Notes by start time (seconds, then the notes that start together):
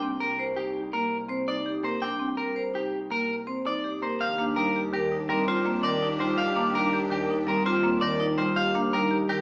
Already playing: C2
0.02 C4
0.20 A#4
0.39 C5
0.56 D#4 G4
0.93 A#3 A#4
1.29 C4 C5
1.48 D#4 D5
1.66 G4
1.84 A#3 A#4 C5
2.02 D4 G5
2.19 C4
2.37 A#4
2.56 C5
2.74 D#4 G4
3.11 A#3 A#4
3.47 C4 C5
3.66 D#4 D5
3.84 G4
4.02 A#3 A#4 C5
4.21 D#2 D4 G4 F5
4.38 A#3 D4
4.56 G3 D#4 A#4
4.76 G4
4.93 D#3 G4 A#4
5.12 D#4
5.29 G3 C4 A#4
5.48 F4 C5
5.66 A#3 C4
5.83 D#3 A#4 D5
6.02 D#4
6.19 G3 F4 C5
6.38 G4 F5
6.56 A#3 D4
6.74 G3 D#4 A#4
6.93 G4
7.10 D#3 G4 A#4
7.30 D#4
7.47 G3 C4 A#4
7.66 F4 C5
7.83 A#3 C4
8.01 D#3 A#4 D5
8.20 D#4
8.38 G3 F4 C5
8.56 G4 F5
8.74 A#3 D4
8.93 G3 D#4 A#4
9.11 G4
9.29 D#3 G4 A#4